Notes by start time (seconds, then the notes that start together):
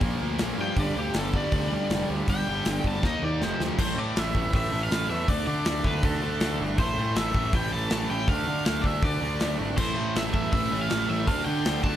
0.00 A#1 A#2 F3 A#3, kick, open hi-hat
0.20 D2 A#2 F3 A#3
0.38 A#1 A#2 F3 A#3, snare, open hi-hat
0.57 G2 A#2 F3 A#3
0.61 G5
0.75 G1 G2 D3 G3 D5, kick, open hi-hat
0.95 D2 G2 D3 G3 G4
1.14 G1 G2 D3 G3, snare, open hi-hat
1.18 A4
1.33 G2 D3 G3 D5, kick
1.52 D2 G2 D3 G3, kick, open hi-hat
1.71 G2 D3 G3
1.89 F1 G2 D3 G3, snare, open hi-hat
2.09 D2 G2 D3 G3
2.28 G1 G2 D3 G3 G5, kick, open hi-hat
2.47 G1 G2 D3 G3
2.65 G1 G2 D3 G3, snare, open hi-hat
2.84 G1 G2 D3 G3 A5, kick
3.03 D#2 D#3 A#3 D#4 D#5, kick, snare
3.22 D#2 D#3 A#3 D#4 D5
3.41 F1 F2 C3 F3 C5, snare
3.59 D2 F2 C3 F3, snare
3.77 A1 A2 E3 A3 C5, kick, crash
3.96 A2 E3 A3 D5
4.15 A1 A2 E3 A3 E5, snare, open hi-hat
4.34 A1 A2 E3 A3, kick
4.52 A1 A2 E3 A3 E5, kick, open hi-hat
4.72 A1 A2 E3 A3
4.84 F5
4.91 A1 A2 E3 A3, snare, open hi-hat
5.09 E2 A2 E3 A3 E5
5.28 D2 D3 A3 D4 D5, kick, open hi-hat
5.47 D3 A3 D4 D5
5.65 D2 D3 A3 D4, snare, open hi-hat
5.84 D2 D3 A3 D4 B4, kick
6.03 D2 D3 A3 D4 A4, kick, open hi-hat
6.22 D2 D3 A3 D4
6.40 D2 D3 A3 D4, snare, open hi-hat
6.60 G1 D3 A3 D4
6.78 A1 A2 E3 A3 C5, kick, open hi-hat
6.97 A2 E3 A3
7.16 A1 A2 E3 A3 E5, snare, open hi-hat
7.34 A1 A2 E3 A3, kick
7.53 A1 A2 E3 A3 G5, kick, open hi-hat
7.73 A1 A2 E3 A3 A5
7.90 A1 A2 E3 A3 A5, snare, open hi-hat
8.09 A1 A2 E3 A3 G5
8.27 D2 D3 A3 D4 F5, kick, open hi-hat
8.47 D3 A3 D4
8.65 D2 D3 A3 D4 F5, snare, open hi-hat
8.81 D2 D3 A3 D4 D5, kick
8.86 E5
9.02 D2 D3 A3 D4 D5, kick, open hi-hat
9.20 D2 D3 A3 D4
9.39 D2 D3 A3 D4, snare, open hi-hat
9.58 G#1 D3 A3 D4
9.76 A1 A2 E3 A3 C5, kick, crash
9.95 A2 E3 A3
10.15 A1 A2 E3 A3 E5, snare, open hi-hat
10.33 A1 A2 E3 A3 E5, kick
10.52 A1 A2 E3 A3 E5, kick, open hi-hat
10.71 A1 A2 E3 A3
10.82 F5
10.90 A1 A2 E3 A3, snare, open hi-hat
11.08 A1 A2 E3 A3 E5
11.27 D2 D3 A3 D4 F5, kick, open hi-hat
11.45 D3 A3 D4 G5
11.65 D2 D3 A3 D4, snare, open hi-hat
11.84 D2 D3 A3 D4 A5, kick